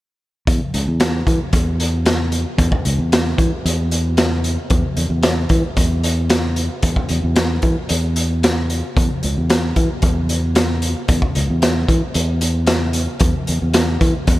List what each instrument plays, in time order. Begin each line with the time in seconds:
0.47 fingered electric bass E2, kick, closed hi-hat
0.74 fingered electric bass C#2, closed hi-hat
0.88 fingered electric bass E2
1.00 snare, closed hi-hat
1.27 fingered electric bass E3, kick, closed hi-hat
1.53 fingered electric bass E2, kick, closed hi-hat
1.80 closed hi-hat
2.06 snare, closed hi-hat
2.32 closed hi-hat
2.58 fingered electric bass E2, kick, closed hi-hat
2.72 kick
2.85 fingered electric bass C#2, closed hi-hat
2.99 fingered electric bass E2
3.12 snare, closed hi-hat
3.38 fingered electric bass E3, kick, closed hi-hat
3.65 fingered electric bass E2, closed hi-hat
3.91 closed hi-hat
4.17 snare, closed hi-hat
4.44 closed hi-hat
4.70 fingered electric bass E2, kick, closed hi-hat
4.97 fingered electric bass E2, closed hi-hat
5.10 fingered electric bass E2
5.23 snare, closed hi-hat
5.49 fingered electric bass E3, kick, closed hi-hat
5.76 fingered electric bass E2, kick, closed hi-hat
6.04 closed hi-hat
6.30 snare, closed hi-hat
6.56 closed hi-hat
6.83 fingered electric bass E2, kick, closed hi-hat
6.96 kick
7.09 fingered electric bass E2, closed hi-hat
7.24 fingered electric bass E2
7.36 snare, closed hi-hat
7.62 fingered electric bass E3, kick, closed hi-hat
7.89 fingered electric bass E2, closed hi-hat
8.16 closed hi-hat
8.43 snare, closed hi-hat
8.70 closed hi-hat
8.97 fingered electric bass E2, kick, closed hi-hat
9.23 fingered electric bass C#2, closed hi-hat
9.38 fingered electric bass E2
9.50 snare, closed hi-hat
9.76 fingered electric bass E3, kick, closed hi-hat
10.02 fingered electric bass E2, kick, closed hi-hat
10.29 closed hi-hat
10.55 snare, closed hi-hat
10.82 closed hi-hat
11.08 fingered electric bass E2, kick, closed hi-hat
11.22 kick
11.35 fingered electric bass C#2, closed hi-hat
11.50 fingered electric bass E2
11.62 snare, closed hi-hat
11.88 fingered electric bass E3, kick, closed hi-hat
12.14 fingered electric bass E2, closed hi-hat
12.41 closed hi-hat
12.67 snare, closed hi-hat
12.93 closed hi-hat
13.20 fingered electric bass E2, kick, closed hi-hat
13.47 fingered electric bass E2, closed hi-hat
13.62 fingered electric bass E2
13.74 snare, closed hi-hat
14.01 fingered electric bass E3, kick, closed hi-hat
14.27 fingered electric bass E2, kick, closed hi-hat